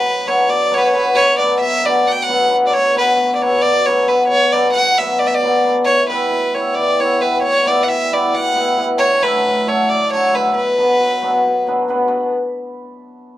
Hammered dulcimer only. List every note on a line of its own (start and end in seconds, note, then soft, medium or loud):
0.00 0.47 B2 medium
0.00 0.25 F#3 medium
0.26 0.69 F#3 medium
0.26 0.38 B3 medium
0.26 0.38 D4 medium
0.26 0.39 F#4 medium
0.26 0.39 B4 medium
0.48 1.13 B2 medium
0.71 0.90 F#3 medium
0.71 0.83 B3 medium
0.71 0.83 D4 medium
0.71 0.83 F#4 medium
0.71 0.83 B4 medium
0.91 1.36 F#3 medium
0.91 1.04 B3 medium
0.91 1.04 D4 medium
0.91 1.04 F#4 medium
0.91 1.05 B4 medium
1.14 1.59 B2 medium
1.38 1.82 F#3 medium
1.38 1.50 B3 medium
1.38 1.50 D4 medium
1.38 1.51 F#4 medium
1.38 1.51 B4 medium
1.61 2.04 B2 medium
1.83 2.27 F#3 medium
1.83 1.96 B3 medium
1.83 1.97 D4 medium
1.83 1.97 F#4 medium
1.83 1.97 B4 medium
2.05 2.70 B2 medium
2.28 2.48 F#3 medium
2.28 2.41 B3 medium
2.28 2.41 D4 medium
2.28 2.41 F#4 medium
2.28 2.41 B4 medium
2.49 2.93 F#3 medium
2.49 2.62 B3 medium
2.49 2.62 D4 medium
2.49 2.62 F#4 medium
2.49 2.62 B4 medium
2.71 3.15 B2 medium
2.95 3.40 F#3 medium
2.95 3.07 B3 medium
2.95 3.08 D4 medium
2.95 3.08 F#4 medium
2.95 3.08 B4 medium
3.16 3.63 B2 medium
3.41 3.85 F#3 medium
3.41 3.54 B3 medium
3.41 3.54 D4 medium
3.41 3.55 F#4 medium
3.41 3.55 B4 medium
3.64 4.27 B2 medium
3.86 4.05 F#3 medium
3.86 3.99 B3 medium
3.86 3.99 D4 medium
3.86 3.99 F#4 medium
3.86 3.99 B4 medium
4.07 4.51 F#3 medium
4.07 4.19 B3 medium
4.07 4.20 D4 medium
4.07 4.20 F#4 medium
4.07 4.20 B4 medium
4.28 4.74 B2 medium
4.52 4.98 F#3 medium
4.52 4.65 B3 medium
4.52 4.66 D4 medium
4.52 4.66 F#4 medium
4.52 4.66 B4 medium
4.75 5.21 B2 medium
4.99 5.42 F#3 medium
4.99 5.12 B3 medium
4.99 5.12 D4 medium
4.99 5.12 F#4 medium
4.99 5.13 B4 medium
5.22 5.90 B2 medium
5.43 5.62 F#3 medium
5.43 5.56 B3 medium
5.43 5.56 D4 medium
5.43 5.56 F#4 medium
5.43 5.56 B4 medium
5.64 5.90 F#3 medium
5.64 5.76 B3 medium
5.64 5.77 D4 medium
5.64 5.77 F#4 medium
5.64 5.77 B4 medium
5.85 6.35 E3 medium
6.08 6.53 G3 medium
6.08 6.22 B3 medium
6.08 6.22 E4 medium
6.08 6.22 G4 medium
6.08 6.22 B4 medium
6.31 7.40 B2 medium
6.54 6.97 G3 medium
6.54 6.68 B3 medium
6.54 6.68 E4 medium
6.54 6.68 G4 medium
6.54 6.69 B4 medium
6.76 7.47 E3 medium
6.99 7.18 G3 medium
6.99 7.12 B3 medium
6.99 7.12 E4 medium
6.99 7.12 G4 medium
6.99 7.12 B4 medium
7.19 7.64 G3 medium
7.19 7.33 B3 medium
7.19 7.33 E4 medium
7.19 7.33 G4 medium
7.19 7.34 B4 medium
7.41 8.32 B2 medium
7.65 8.10 G3 medium
7.65 7.78 B3 medium
7.65 7.79 E4 medium
7.65 7.79 G4 medium
7.65 7.79 B4 medium
7.87 8.36 E3 medium
8.11 8.54 G3 medium
8.11 8.25 B3 medium
8.11 8.25 E4 medium
8.11 8.25 G4 medium
8.11 8.25 B4 medium
8.33 9.03 B2 medium
8.55 8.76 G3 medium
8.55 8.68 B3 medium
8.55 8.68 E4 medium
8.55 8.68 G4 medium
8.55 8.69 B4 medium
8.77 9.03 G3 medium
8.77 8.89 B3 medium
8.77 8.90 E4 medium
8.77 8.90 G4 medium
8.77 8.90 B4 medium
8.97 9.47 D3 medium
9.21 9.65 F#3 medium
9.21 9.34 A3 medium
9.21 9.35 D4 medium
9.21 9.35 F#4 medium
9.21 9.35 A4 medium
9.44 9.92 A2 medium
9.66 9.92 F#3 medium
9.66 9.80 A3 medium
9.66 9.80 D4 medium
9.66 9.80 F#4 medium
9.66 9.80 A4 medium
9.89 10.58 D3 medium
10.12 10.31 F#3 medium
10.12 10.24 A3 medium
10.12 10.25 D4 medium
10.12 10.25 F#4 medium
10.12 10.25 A4 medium
10.32 10.58 F#3 medium
10.32 10.45 A3 medium
10.32 10.45 D4 medium
10.32 10.45 F#4 medium
10.32 10.45 A4 medium
10.53 10.97 B2 medium
10.77 11.20 F#3 medium
10.77 10.90 B3 medium
10.77 10.90 D4 medium
10.77 10.90 F#4 medium
10.77 10.91 B4 medium
10.99 11.42 B2 medium
11.21 11.65 F#3 medium
11.21 11.35 B3 medium
11.21 11.35 D4 medium
11.21 11.35 F#4 medium
11.21 11.36 B4 medium
11.44 12.13 B2 medium
11.67 11.87 F#3 medium
11.67 11.79 B3 medium
11.67 11.79 D4 medium
11.67 11.79 F#4 medium
11.67 11.80 B4 medium
11.88 12.13 F#3 medium
11.88 12.00 B3 medium
11.88 12.00 D4 medium
11.88 12.00 F#4 medium
11.88 12.01 B4 medium
12.07 12.30 B3 medium
12.07 12.30 D4 medium
12.07 12.30 F#4 medium
12.07 12.30 B4 medium